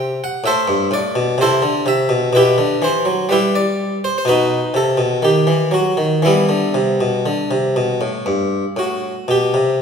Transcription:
harpsichord
Already playing: C3 G5
0.24 F#5
0.44 A2 A4 C5 E5
0.68 G2
0.91 A2 D5
1.15 B2
1.38 C3 C5
1.42 E4 A4
1.62 D3
1.86 C3 E5
2.09 B2
2.33 B2 E4 G4 B4
2.58 D3
2.82 E3 C5
3.05 F#3
3.29 G3 E4 G4 B4
3.55 D5
4.04 C5
4.18 C5
4.25 B2 D#4 F#4 B4
4.74 C3 A4
4.97 B2
5.22 D#3 G4
5.47 E3
5.71 F#3 F#4
5.97 D#3
6.22 E3 G3 B3 E4
6.49 D3
6.74 C3
7.01 B2
7.26 D3
7.51 C3
7.76 B2
8.01 A2
8.26 G2
8.76 A2 F#4
9.28 B2 G4
9.54 C3

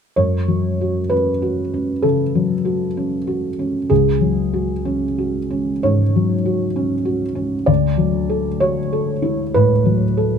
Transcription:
felt piano
0.16 F#2 C#5
0.48 F#3
0.81 F#4
1.10 C#4 B4
1.42 F#4
1.74 C#4
2.02 C#3 A4
2.35 F#3
2.65 F#4
2.97 C#4
3.27 F#4
3.59 C#4
3.90 C#2 G#4
4.21 F#3
4.53 F#4
4.85 C#4
5.18 F#4
5.50 C#4
5.83 G#2 C#5
6.16 F#3
6.46 F#4
6.76 C#4
7.05 F#4
7.35 C#4
7.66 D2 D5
7.97 F#3
8.29 A4
8.60 F#4 C#5
8.93 A4
9.22 E4
9.54 A2 B4
9.86 F#3
10.17 A4

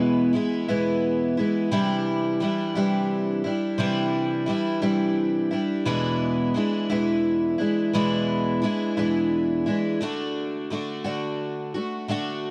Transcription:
twelve-string acoustic guitar
Already playing: E2 B2 E3 G#3 B3 E4
0.33 E3 G#3 B3 E4
0.68 E2 B2 E3 G#3 B3 E4
1.37 E3 G#3 B3 E4
1.71 C3 E3 G3 D4 E4
2.40 E3 G3 D4 E4
2.75 C3 E3 G3 D4 E4
3.44 G3 D4 E4
3.78 C3 E3 G3 D4 E4
4.46 E3 G3 D4 E4
4.82 C3 E3 G3 D4 E4
5.51 G3 D4 E4
5.85 E2 B2 E3 G#3 D4 E4
6.54 E3 G#3 D4 E4
6.90 E2 B2 E3 G#3 D4 E4
7.58 E3 G#3 D4 E4
7.93 E2 B2 E3 G#3 D4 E4
8.62 E3 G#3 D4 E4
8.97 E2 B2 E3 G#3 D4 E4
9.66 E3 G#3 D4 E4
10.01 D3 A3 D4 F#4
10.70 D3 A3 D4 F#4
11.04 D3 A3 D4 F#4
11.74 A3 D4 F#4
12.08 D3 A3 D4 F#4

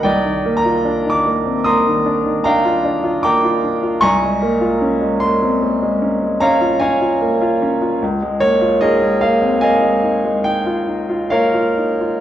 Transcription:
grand piano
0.03 C2 D5 D#5 G5
0.25 D#3
0.45 A#3
0.57 A#5
0.65 F4
0.85 D4
1.05 D#3
1.10 D6
1.26 A#3
1.45 C4
1.65 A#3 A#5 C6 D#6
1.87 D#3
2.06 D4
2.25 D#3
2.44 D4 F5 G5 A#5
2.65 F4
2.85 D4
3.04 F4
3.23 A#3 G5 A#5 D6
3.44 F4
3.64 D4
3.83 F4
4.01 C2 G#5 A#5 C#6
4.23 G#3
4.42 A#3
4.61 F4
4.82 C#4
5.01 G#3
5.20 A#3 C6
5.42 C4
5.62 A#3
5.82 G#3
6.02 C#4
6.22 G#3
6.41 C#4 C#5 F5 A#5
6.61 F4
6.79 C#4 C#5 F5 G#5
7.01 F4
7.21 A#3
7.41 F4
7.62 C#4
7.82 F4
8.02 C#2
8.22 G#3
8.40 A#3 C#5
8.61 F4
8.81 D#4 G#4 A#4 D#5
9.02 G#3
9.21 A#3 F5
9.42 C4
9.61 A#3 D#5 F5 G#5
9.82 G#3
10.03 D#4
10.24 G#3
10.44 D#4 G5
10.66 F4
10.88 D#4
11.10 F4
11.30 A#3 A#4 C#5 F5
11.54 F4
11.78 D#4
12.01 F4

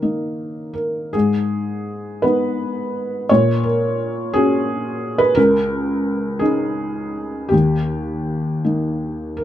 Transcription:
felt piano
Already playing: D#3 A#4
0.02 A#3 D#4
0.73 A#4
1.13 G#2 G#4
2.22 B3 D#4 B4
3.29 A#2 C#5
3.63 A#4
4.33 C#4 F#4 G#4
5.18 B4
5.35 C#2 A#4
6.39 C#4 D#4 G#4
7.49 D#2 G4
8.64 A#3 D#4
9.37 A#4

